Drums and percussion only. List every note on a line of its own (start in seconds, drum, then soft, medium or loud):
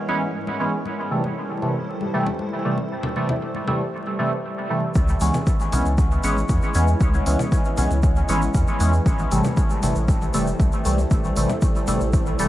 0.09 high conga soft
0.47 high conga soft
0.86 high conga soft
1.24 high conga soft
1.62 high conga soft
2.01 high conga soft
2.26 low conga medium
2.39 high conga soft
2.78 high conga soft
3.03 low conga medium
3.16 high conga soft
3.29 low conga medium
3.55 high conga soft
3.67 low conga medium
4.95 kick loud
4.95 shaker soft
5.08 shaker soft
5.21 open hi-hat medium
5.21 high conga soft
5.21 shaker medium
5.34 low conga loud
5.34 shaker soft
5.47 kick loud
5.47 shaker soft
5.60 high conga soft
5.60 shaker soft
5.72 open hi-hat medium
5.72 low conga medium
5.72 shaker medium
5.86 shaker soft
5.98 kick loud
5.98 high conga soft
5.98 shaker soft
6.11 shaker soft
6.24 open hi-hat medium
6.24 shaker medium
6.37 high conga soft
6.37 shaker soft
6.49 kick loud
6.49 shaker medium
6.62 shaker soft
6.75 open hi-hat medium
6.75 high conga soft
6.75 shaker medium
6.87 shaker soft
7.01 kick loud
7.01 shaker medium
7.14 high conga soft
7.14 shaker soft
7.26 open hi-hat medium
7.26 shaker medium
7.39 low conga loud
7.39 shaker soft
7.52 kick loud
7.52 high conga soft
7.52 shaker medium
7.65 shaker soft
7.77 open hi-hat medium
7.77 low conga medium
7.77 shaker medium
7.91 high conga soft
7.91 shaker soft
8.03 kick loud
8.03 shaker soft
8.16 shaker soft
8.29 open hi-hat medium
8.29 high conga soft
8.29 shaker medium
8.42 shaker soft
8.54 kick loud
8.54 shaker soft
8.67 high conga soft
8.67 shaker soft
8.80 open hi-hat medium
8.80 shaker medium
8.93 shaker soft
9.06 kick loud
9.06 high conga soft
9.06 shaker medium
9.19 shaker soft
9.31 open hi-hat medium
9.31 shaker medium
9.44 high conga soft
9.44 low conga medium
9.44 shaker soft
9.57 kick loud
9.57 shaker medium
9.70 shaker soft
9.83 open hi-hat medium
9.83 high conga soft
9.83 low conga medium
9.83 shaker loud
9.96 shaker soft
10.08 kick loud
10.08 shaker soft
10.21 high conga soft
10.21 shaker soft
10.34 open hi-hat medium
10.34 shaker loud
10.47 shaker soft
10.60 kick loud
10.60 high conga soft
10.60 shaker medium
10.72 shaker soft
10.85 open hi-hat medium
10.85 shaker medium
10.98 high conga soft
10.98 shaker soft
11.11 kick loud
11.11 shaker medium
11.24 shaker soft
11.36 open hi-hat medium
11.36 high conga soft
11.36 shaker medium
11.49 low conga loud
11.49 shaker soft
11.62 kick loud
11.62 shaker soft
11.75 high conga soft
11.75 shaker soft
11.88 open hi-hat medium
11.88 low conga medium
11.88 shaker loud
12.01 shaker soft
12.13 kick loud
12.13 high conga soft
12.13 shaker soft
12.26 shaker soft
12.39 open hi-hat medium
12.39 shaker medium